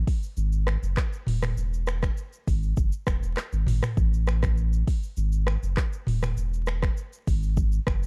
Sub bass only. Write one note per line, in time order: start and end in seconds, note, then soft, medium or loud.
0.37 0.76 G#1 loud
0.83 0.95 F#1 loud
1.27 1.53 D#1 medium
1.57 2.09 E1 loud
2.47 2.73 G#1 medium
2.77 2.91 F#1 loud
3.07 3.20 E1 medium
3.23 3.35 E1 medium
3.53 3.65 G#1 medium
3.67 3.81 G#1 medium
3.97 4.83 A1 loud
5.17 5.56 G#1 medium
5.63 5.75 F#1 medium
6.07 6.33 D#1 loud
6.37 6.89 E1 loud
7.27 7.79 G#1 medium
7.87 8.07 F#1 loud